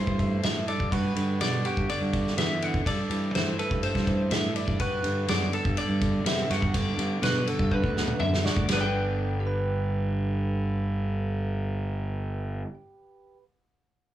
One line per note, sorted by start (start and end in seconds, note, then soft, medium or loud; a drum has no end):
0.00 0.67 G2 medium
0.00 0.42 E3 medium
0.00 0.19 A3 medium
0.00 0.65 A4 medium
0.00 0.43 C5 medium
0.07 0.37 G2 medium
0.07 kick medium
0.19 0.65 A3 soft
0.19 kick medium
0.19 ride soft
0.43 0.64 A2 medium
0.43 0.64 E3 medium
0.43 0.68 E5 medium
0.43 snare loud
0.43 ride medium
0.67 0.91 G2 medium
0.67 0.89 A4 medium
0.67 0.92 D5 medium
0.67 ride medium
0.80 0.90 G2 loud
0.80 kick medium
0.91 2.83 G2 medium
0.91 1.12 G2 medium
0.91 1.65 F#4 medium
0.91 1.41 B4 medium
0.91 kick loud
0.91 ride medium
1.16 1.36 G2 medium
1.16 1.88 D3 medium
1.16 ride medium
1.41 1.61 B2 medium
1.41 2.36 B3 medium
1.41 1.65 D5 medium
1.41 snare medium
1.41 ride medium
1.65 2.84 F#4 medium
1.65 1.89 G4 medium
1.65 ride medium
1.77 1.87 G2 medium
1.77 kick medium
1.89 2.12 D3 medium
1.89 2.38 D5 medium
1.89 ride medium
2.01 2.31 G2 medium
2.13 2.60 D3 medium
2.13 kick medium
2.13 ride medium
2.27 snare soft
2.37 2.78 E3 medium
2.37 2.83 B3 medium
2.37 2.63 E5 medium
2.37 snare loud
2.37 ride medium
2.62 2.86 D3 medium
2.62 2.86 F#5 medium
2.62 ride medium
2.74 kick medium
2.86 2.96 G2 medium
2.86 3.81 G2 medium
2.86 3.59 A4 medium
2.86 3.35 D5 medium
2.86 kick loud
2.86 ride medium
3.10 3.30 G2 medium
3.10 4.06 E3 medium
3.10 ride medium
3.35 3.55 E3 medium
3.35 4.31 A3 medium
3.35 3.59 C5 medium
3.35 snare loud
3.35 ride medium
3.59 4.77 A4 medium
3.59 3.83 B4 medium
3.59 ride medium
3.71 3.91 G2 medium
3.71 kick medium
3.83 4.77 G2 medium
3.83 4.32 C5 medium
3.83 ride medium
3.95 4.25 G2 loud
3.95 kick medium
3.95 snare soft
4.07 4.55 E3 medium
4.07 kick medium
4.07 ride soft
4.31 4.51 A2 medium
4.31 4.77 A3 medium
4.31 4.56 E5 medium
4.31 snare loud
4.31 ride medium
4.56 4.77 E3 medium
4.56 4.80 D5 medium
4.56 ride medium
4.68 4.78 G2 medium
4.68 kick medium
4.80 5.00 G2 loud
4.80 5.77 G2 medium
4.80 5.54 F#4 medium
4.80 5.29 B4 medium
4.80 kick medium
4.80 ride medium
5.03 5.24 G2 medium
5.03 6.00 D3 medium
5.03 ride medium
5.28 5.48 F#2 medium
5.28 6.26 B3 medium
5.28 5.53 D5 medium
5.28 snare loud
5.28 ride medium
5.53 5.77 A4 medium
5.53 6.48 A4 medium
5.53 ride medium
5.65 5.75 G2 medium
5.65 kick medium
5.77 6.47 G2 medium
5.77 6.26 D5 medium
5.77 ride medium
5.89 6.19 G2 medium
6.01 6.73 D3 medium
6.01 kick medium
6.01 ride medium
6.25 6.45 C3 medium
6.25 6.99 B3 medium
6.25 6.51 E5 medium
6.25 snare loud
6.25 ride medium
6.50 8.41 G2 medium
6.50 6.90 G2 medium
6.50 7.22 F#4 medium
6.50 6.75 F#5 medium
6.50 snare soft
6.50 ride medium
6.62 kick medium
6.74 7.46 D3 medium
6.74 7.23 D5 medium
6.74 kick medium
6.74 ride medium
6.98 7.18 G2 medium
6.98 7.96 B3 medium
6.98 ride medium
7.22 7.42 B2 medium
7.22 8.41 F#4 medium
7.22 7.48 B4 medium
7.22 snare loud
7.22 ride medium
7.47 7.71 D3 medium
7.47 7.72 A4 medium
7.47 ride medium
7.59 7.79 G2 medium
7.59 kick medium
7.71 8.19 D3 medium
7.71 8.20 B4 medium
7.71 kick medium
7.84 8.13 D2 loud
7.84 kick medium
7.97 8.42 B3 medium
7.97 snare medium
8.07 mid tom medium
8.20 8.40 F#2 medium
8.20 8.69 D3 medium
8.20 8.44 E5 medium
8.20 mid tom medium
8.34 snare medium
8.44 8.66 G2 medium
8.44 8.66 F#4 medium
8.44 8.68 D5 medium
8.44 snare medium
8.57 8.66 D2 loud
8.57 kick medium
8.68 12.61 G1 medium
8.68 12.65 G2 medium
8.68 12.67 D3 medium
8.68 9.40 B3 medium
8.68 snare medium
8.68 ride bell medium
8.73 9.46 D4 medium
8.73 12.66 B4 medium
8.77 8.80 D5 medium
8.81 12.74 G5 medium
9.40 13.37 G4 medium
9.47 13.44 B4 medium